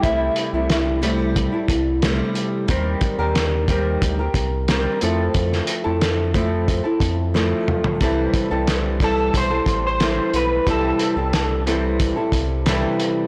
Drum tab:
HH |x-x-x-x-x-x-x-x-|x-x-x-x-x-x-x-x-|x-x-x-x-x-x-----|x-x-x-x-x-x-x-x-|
SD |----o-------o---|----o-------o---|-o--o-------o---|----o-------o---|
T2 |----------------|----------------|--------------o-|----------------|
FT |----------------|----------------|---------------o|----------------|
BD |o-------o-o-----|o-o---o-o-o-----|o-----o-o-o-----|o-o---o-o-o-----|

HH |x-x-x-x-x-x-x-x-|
SD |----o-------o---|
T2 |----------------|
FT |----------------|
BD |o-------o-o-----|